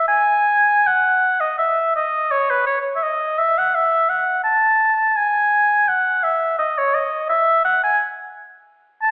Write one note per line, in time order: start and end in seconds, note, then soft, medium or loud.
0.08 0.88 G#5 medium
0.87 1.42 F#5 medium
1.40 1.57 D#5 medium
1.58 1.94 E5 medium
1.96 2.33 D#5 medium
2.31 2.52 C#5 medium
2.50 2.66 B4 medium
2.66 2.79 C#5 medium
2.96 3.04 E5 medium
3.03 3.40 D#5 medium
3.39 3.60 E5 medium
3.58 3.76 F#5 medium
3.75 4.11 E5 medium
4.10 4.43 F#5 medium
4.44 5.18 A5 medium
5.16 5.90 G#5 medium
5.88 6.25 F#5 medium
6.23 6.58 E5 medium
6.59 6.80 D#5 medium
6.78 6.96 C#5 medium
6.95 7.29 D#5 medium
7.29 7.63 E5 medium
7.65 7.81 F#5 medium
7.83 7.99 G#5 medium
9.02 9.11 A5 medium